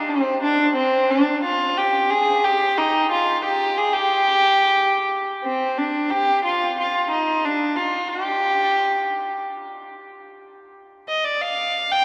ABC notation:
X:1
M:3/4
L:1/16
Q:1/4=90
K:none
V:1 name="Violin"
C2 D2 C2 D2 F2 G2 | _A2 G2 _E2 F2 G2 A G- | G6- G z C2 D2 | G2 F2 F2 _E2 D2 F2 |
G8 z4 | z6 _e d f3 g |]